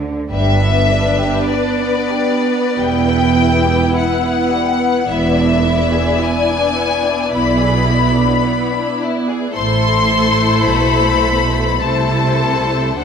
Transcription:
0.00 0.16 D2 medium
0.00 0.31 D3 medium
0.30 1.30 G1 medium
0.30 1.31 G2 medium
0.30 0.59 G3 medium
0.30 5.04 B3 medium
0.30 2.74 D4 medium
0.30 5.04 B4 medium
0.30 1.47 E5 medium
0.62 0.91 B3 medium
0.89 1.19 D4 soft
1.19 1.50 G4 soft
1.50 1.81 D4 medium
1.50 2.78 D5 medium
1.81 2.13 B3 medium
2.13 2.46 G3 medium
2.47 2.78 B3 medium
2.78 3.76 E1 medium
2.78 3.76 E2 medium
2.78 3.06 G3 medium
2.78 5.08 E4 medium
2.78 3.96 G5 medium
3.08 3.38 B3 soft
3.37 3.66 E4 soft
3.65 3.94 G4 soft
3.95 4.24 E4 medium
3.95 5.06 F#5 medium
4.24 4.52 B3 medium
4.52 4.80 G3 soft
4.80 5.07 B3 soft
5.08 6.02 E1 medium
5.08 6.02 E2 medium
5.08 5.34 B3 medium
5.08 9.53 B3 medium
5.08 9.53 E4 medium
5.08 9.53 D5 medium
5.08 6.21 E5 medium
5.38 5.65 D4 medium
5.67 5.94 E4 soft
5.94 6.21 G#4 soft
6.21 6.50 E4 medium
6.21 7.33 G#5 medium
6.51 6.78 D4 medium
6.78 7.05 B3 soft
7.04 7.32 D4 medium
7.33 8.27 B1 medium
7.33 8.27 B2 medium
7.33 7.59 E4 medium
7.33 8.98 B5 medium
7.61 7.89 G#4 soft
7.89 8.17 E4 medium
8.18 8.46 D4 medium
8.46 8.74 B3 medium
8.74 9.02 D4 medium
9.02 9.29 E4 medium
9.30 9.57 G#4 soft
9.56 10.65 A1 medium
9.56 10.64 A2 medium
9.56 11.79 A3 medium
9.56 11.79 E4 medium
9.56 11.80 A4 medium
9.56 11.80 C5 medium
9.56 10.64 C6 medium
10.67 11.83 B1 medium
10.67 11.83 B2 medium
10.67 11.83 B5 medium
11.81 13.00 C2 medium
11.81 13.01 C3 medium
11.81 12.99 A3 medium
11.81 12.99 E4 medium
11.81 12.98 A4 medium
11.81 12.98 C5 medium
11.81 13.00 A5 medium
13.00 13.04 D2 soft
13.00 13.04 D4 soft
13.00 13.04 A4 soft
13.00 13.04 C5 medium
13.00 13.04 F#5 medium

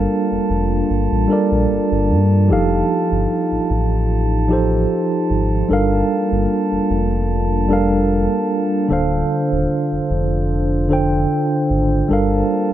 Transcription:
0.00 0.52 G3 medium
0.00 2.47 G3 medium
0.00 2.47 A#3 medium
0.00 0.52 D4 medium
0.00 2.46 D4 medium
0.00 8.86 F4 medium
0.00 0.53 A4 medium
0.00 0.54 A#4 medium
0.00 0.54 F5 loud
0.00 5.66 A5 medium
0.31 0.39 F1 medium
0.50 0.82 F1 loud
0.90 1.07 G1 loud
1.11 1.26 A1 medium
1.28 2.22 G3 medium
1.28 2.22 D4 medium
1.28 2.23 A4 medium
1.28 2.24 A#4 medium
1.33 2.24 D5 medium
1.51 1.66 A#1 medium
1.70 1.78 G1 soft
1.91 2.11 G1 medium
2.10 2.51 G2 medium
2.48 2.83 F1 loud
2.48 3.72 F3 medium
2.48 3.72 D#4 medium
2.48 5.67 D#4 medium
2.48 3.73 G4 medium
2.48 3.74 A4 medium
2.53 3.74 F5 loud
3.11 3.26 G1 loud
3.51 3.59 A1 soft
3.70 4.86 A1 medium
4.48 5.42 F3 medium
4.48 5.42 D#4 medium
4.48 5.43 G4 medium
4.48 5.44 A4 medium
4.53 5.44 C5 loud
5.30 5.63 G#1 medium
5.68 6.03 G1 loud
5.68 6.92 G3 medium
5.68 8.87 G3 medium
5.68 8.87 A#3 medium
5.68 6.93 D4 medium
5.68 12.06 D4 medium
5.68 6.93 A4 medium
5.68 6.94 A#4 medium
5.68 8.86 A5 medium
5.73 6.94 F5 loud
6.31 6.47 G1 loud
6.72 6.79 F1 soft
6.90 8.27 F1 loud
7.68 8.62 G3 medium
7.68 8.63 D4 medium
7.68 8.63 A4 medium
7.68 8.64 A#4 medium
7.73 8.64 F5 loud
8.88 9.23 D1 loud
8.88 10.12 D3 medium
8.88 10.12 D4 medium
8.88 12.73 F4 medium
8.88 10.13 A4 medium
8.88 12.07 C5 medium
8.88 10.14 C5 medium
8.93 10.14 F5 loud
9.52 9.67 D#1 medium
9.92 9.99 F1 soft
10.10 11.26 F1 loud
10.88 11.82 D3 medium
10.88 11.83 D4 medium
10.88 11.83 A4 medium
10.88 11.84 C5 medium
10.93 11.84 G5 loud
11.70 12.03 G#1 loud
12.08 12.43 G1 loud
12.08 12.73 G3 medium
12.08 12.73 A#3 medium
12.08 12.73 D4 medium
12.08 12.73 A4 medium
12.08 12.73 A#4 medium
12.08 12.73 A5 medium
12.13 12.73 F5 medium

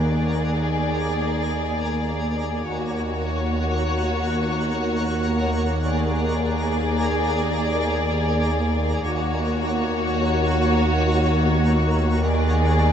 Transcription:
0.00 2.65 D#2 soft
0.00 2.66 D#2 soft
0.00 2.66 D#2 medium
0.00 2.65 A#3 soft
0.00 2.65 G#4 soft
0.00 2.65 A#4 soft
0.00 2.65 D5 soft
0.00 2.69 D5 soft
0.00 2.69 G#5 soft
2.69 9.05 D#2 soft
2.69 9.05 D#2 medium
2.69 9.05 D#2 soft
2.69 9.05 A#3 soft
2.69 5.85 F#4 soft
2.69 9.05 A#4 soft
2.69 5.85 C#5 soft
2.69 5.90 C#5 soft
2.69 5.89 F#5 soft
5.87 9.05 G#4 soft
5.87 9.04 D5 soft
5.87 9.10 D5 soft
5.87 9.10 G#5 soft
9.07 12.93 D#2 soft
9.07 12.93 D#2 medium
9.07 12.93 A#3 soft
9.07 12.25 F#4 soft
9.07 12.93 A#4 soft
9.07 12.24 C#5 soft
9.07 12.29 C#5 soft
9.07 12.29 F#5 soft
12.28 12.93 G#4 medium
12.28 12.93 D5 medium
12.28 12.93 G#5 medium

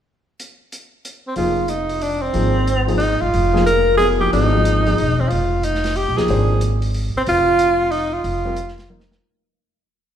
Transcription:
0.40 closed hi-hat soft
0.72 closed hi-hat soft
1.05 closed hi-hat soft
1.27 1.36 C4 medium
1.36 2.31 F1 medium
1.36 1.55 F3 soft
1.36 1.56 A#3 soft
1.36 1.56 D#4 soft
1.36 1.71 F4 medium
1.36 1.56 G#4 medium
1.36 open hi-hat soft
1.68 2.04 D#4 medium
1.68 closed hi-hat soft
1.89 open hi-hat soft
2.01 2.23 D4 medium
2.01 open hi-hat soft
2.22 2.88 C4 medium
2.33 3.18 G#1 medium
2.33 2.53 F3 soft
2.33 2.54 A#3 soft
2.33 2.54 D#4 soft
2.33 2.54 G#4 soft
2.33 open hi-hat soft
2.67 closed hi-hat soft
2.87 2.99 F3 medium
2.87 2.99 A#3 soft
2.87 2.99 D#4 medium
2.87 3.00 G#4 medium
2.87 open hi-hat soft
2.98 3.23 D#4 medium
2.98 open hi-hat soft
3.21 3.33 G1 medium
3.21 3.66 F4 medium
3.34 4.29 F1 medium
3.34 open hi-hat soft
3.53 3.65 F3 medium
3.53 3.65 A#3 medium
3.53 3.65 D#4 medium
3.53 3.65 G#4 medium
3.53 snare soft
3.66 3.97 A#4 loud
3.66 closed hi-hat soft
3.97 4.18 F#3 soft
3.97 4.18 B3 soft
3.97 4.19 E4 soft
3.97 4.07 G#4 medium
3.97 4.19 A4 soft
3.97 open hi-hat soft
4.19 4.48 F3 soft
4.19 4.48 A#3 soft
4.19 4.49 D#4 soft
4.19 4.32 G4 medium
4.19 4.49 G#4 soft
4.33 4.94 G#1 medium
4.33 4.51 F#3 soft
4.33 4.52 B3 soft
4.33 5.22 D#4 medium
4.33 4.52 E4 soft
4.33 4.52 A4 medium
4.33 open hi-hat soft
4.53 4.82 F3 medium
4.53 4.82 A#3 medium
4.53 4.83 D#4 soft
4.53 4.83 G#4 medium
4.65 closed hi-hat soft
4.86 4.97 F3 soft
4.86 4.97 A#3 soft
4.86 4.97 D#4 soft
4.86 4.97 G#4 medium
4.86 open hi-hat soft
4.98 5.29 E1 medium
4.98 open hi-hat soft
5.20 5.30 C4 medium
5.29 6.04 F1 medium
5.29 5.66 F4 medium
5.29 open hi-hat soft
5.63 5.98 D#4 medium
5.63 closed hi-hat soft
5.75 snare soft
5.84 snare soft
5.84 open hi-hat soft
5.96 6.19 G4 medium
5.96 open hi-hat soft
6.09 6.18 A#1 medium
6.17 6.28 C2 medium
6.17 6.59 F3 soft
6.17 6.59 A#3 medium
6.17 6.60 D#4 soft
6.17 6.62 G#4 medium
6.17 6.60 G#4 medium
6.17 snare soft
6.28 7.11 G#1 medium
6.28 6.48 G#3 soft
6.28 6.48 D4 soft
6.28 6.49 G4 soft
6.28 6.49 C5 medium
6.28 open hi-hat soft
6.61 closed hi-hat soft
6.82 open hi-hat soft
6.94 open hi-hat soft
7.16 7.22 C4 medium
7.16 muted upright bass stroke soft
7.26 8.21 F1 medium
7.26 7.93 F4 loud
7.26 open hi-hat soft
7.59 closed hi-hat soft
7.91 8.15 D#4 medium
7.91 open hi-hat soft
8.14 9.11 F4 medium
8.24 9.18 F1 medium
8.24 open hi-hat soft
8.45 8.56 G3 medium
8.45 8.56 C4 medium
8.45 8.57 F4 soft
8.45 8.57 A#4 medium
8.56 closed hi-hat soft
8.68 snare soft
8.78 snare soft
8.78 open hi-hat soft
8.89 9.22 F3 soft
8.89 9.22 A#3 soft
8.89 9.22 D#4 soft
8.89 9.23 A#4 medium
8.89 high tom soft
9.00 snare soft
9.11 snare medium

